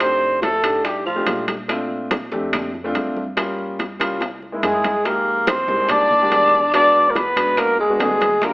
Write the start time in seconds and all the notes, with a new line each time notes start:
Already playing: F2
0.00 A3 C4 D4 D#4 G4 C5, high bongo, high conga, high timbale
0.22 high conga
0.42 A3 A4, high bongo, high conga, high timbale
0.63 A2 A3 D4 D#4 G4, high bongo, high conga, high timbale
0.84 G3 G4, high bongo, high conga, high timbale
1.06 F3 F4, high bongo, high conga
1.16 A3 D4 D#4 G4
1.26 A#2, high bongo, low bongo, high conga, high timbale
1.48 high bongo, high conga, high timbale
1.68 A3 C4 D4 F4, high bongo, high conga, high timbale
1.90 high conga
2.11 high bongo, high conga, high timbale
2.31 F2 A3 C4 D4 G4, high bongo, high conga
2.53 high bongo, high conga, low conga, high timbale
2.74 high bongo, high conga
2.84 A3 C4 D4 F4
2.95 G2, high bongo, low bongo, high conga, high timbale
3.16 high bongo, high conga
3.36 G3 A#3 C#4 F4, high bongo, high conga, high timbale
3.59 high conga
3.79 high bongo, high conga, high timbale
3.99 C2 G3 A#3 C#4 F4, high bongo, high conga, high timbale
4.21 high bongo, high conga, high timbale
4.42 high conga
4.52 G#3 A#3 D#4 E4
4.63 F2 G#3 G#4, low bongo, high conga, high timbale
4.84 low bongo, high conga, high timbale
5.05 G#3 A#3 D#4 G4 A#4, high bongo, high conga, high timbale
5.27 high conga
5.47 C4 C5, high bongo, high conga, high timbale
5.68 C2 G#3 A#3 D#4 G4, high bongo, high conga
5.89 D4 D5, high bongo, high conga, low conga, high timbale
6.10 high bongo, high conga, low conga
6.21 D#3 G#3 A#3 G4
6.31 E2, high bongo, low bongo, high conga, high timbale
6.53 high bongo
6.73 G#3 B3 D4 F#4 D5, high bongo, high conga, high timbale
6.94 high conga
7.09 A#3 A#4
7.15 B3 B4, high bongo, high conga, high timbale
7.36 B1 G#3 B3 D4 F#4, high bongo, high conga, high timbale
7.57 A#3 A#4, high bongo, high conga, high timbale
7.78 G#3 G#4, high bongo, high conga
7.89 G#3 B3 D4 F#4
8.00 D#2 G#3 G#4, high bongo, low bongo, high conga, high timbale, low timbale
8.21 high bongo, high conga, high timbale
8.41 G3 A#3 D4 F4 A#4, high bongo, high conga, high timbale